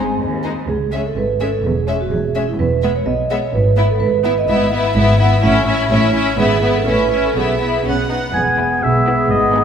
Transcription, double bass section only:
0, 0, Header, 1, 2, 480
1, 0, Start_track
1, 0, Key_signature, 4, "minor"
1, 0, Tempo, 487409
1, 675, Time_signature, 2, 2, 24, 8
1, 1150, Tempo, 474684
1, 4500, Key_signature, 4, "major"
1, 6430, Tempo, 485044
1, 9649, End_track
2, 0, Start_track
2, 0, Title_t, "Double bass section"
2, 0, Program_c, 0, 48
2, 680, Note_on_c, 0, 37, 51
2, 1054, Note_off_c, 0, 37, 0
2, 1153, Note_on_c, 0, 32, 52
2, 1532, Note_off_c, 0, 32, 0
2, 1638, Note_on_c, 0, 28, 54
2, 2013, Note_off_c, 0, 28, 0
2, 2116, Note_on_c, 0, 28, 54
2, 2489, Note_off_c, 0, 28, 0
2, 2589, Note_on_c, 0, 28, 56
2, 2967, Note_off_c, 0, 28, 0
2, 3073, Note_on_c, 0, 35, 61
2, 3450, Note_off_c, 0, 35, 0
2, 3553, Note_on_c, 0, 32, 61
2, 3925, Note_off_c, 0, 32, 0
2, 4028, Note_on_c, 0, 32, 61
2, 4403, Note_off_c, 0, 32, 0
2, 4508, Note_on_c, 0, 32, 68
2, 4908, Note_off_c, 0, 32, 0
2, 4993, Note_on_c, 0, 32, 71
2, 5391, Note_off_c, 0, 32, 0
2, 5466, Note_on_c, 0, 33, 71
2, 5866, Note_off_c, 0, 33, 0
2, 5947, Note_on_c, 0, 33, 80
2, 6351, Note_off_c, 0, 33, 0
2, 6428, Note_on_c, 0, 32, 76
2, 6828, Note_off_c, 0, 32, 0
2, 6902, Note_on_c, 0, 33, 64
2, 7309, Note_off_c, 0, 33, 0
2, 7390, Note_on_c, 0, 35, 57
2, 7799, Note_off_c, 0, 35, 0
2, 7878, Note_on_c, 0, 35, 52
2, 8286, Note_off_c, 0, 35, 0
2, 8363, Note_on_c, 0, 28, 52
2, 8740, Note_off_c, 0, 28, 0
2, 8844, Note_on_c, 0, 35, 55
2, 9217, Note_off_c, 0, 35, 0
2, 9317, Note_on_c, 0, 32, 62
2, 9649, Note_off_c, 0, 32, 0
2, 9649, End_track
0, 0, End_of_file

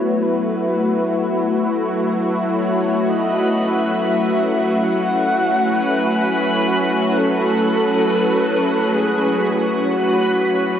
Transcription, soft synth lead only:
0, 0, Header, 1, 2, 480
1, 0, Start_track
1, 0, Key_signature, 3, "minor"
1, 0, Tempo, 500000
1, 10363, End_track
2, 0, Start_track
2, 0, Title_t, "Soft synth lead"
2, 0, Program_c, 0, 80
2, 0, Note_on_c, 0, 73, 123
2, 213, Note_on_c, 0, 71, 99
2, 228, Note_off_c, 0, 73, 0
2, 1879, Note_off_c, 0, 71, 0
2, 2422, Note_on_c, 0, 73, 89
2, 2969, Note_on_c, 0, 75, 96
2, 2984, Note_off_c, 0, 73, 0
2, 3541, Note_on_c, 0, 76, 101
2, 3555, Note_off_c, 0, 75, 0
2, 4638, Note_on_c, 0, 78, 117
2, 4652, Note_off_c, 0, 76, 0
2, 6324, Note_off_c, 0, 78, 0
2, 6816, Note_on_c, 0, 71, 79
2, 6890, Note_on_c, 0, 69, 127
2, 6905, Note_off_c, 0, 71, 0
2, 8587, Note_on_c, 0, 68, 102
2, 8602, Note_off_c, 0, 69, 0
2, 9170, Note_on_c, 0, 66, 106
2, 9185, Note_off_c, 0, 68, 0
2, 10363, Note_off_c, 0, 66, 0
2, 10363, End_track
0, 0, End_of_file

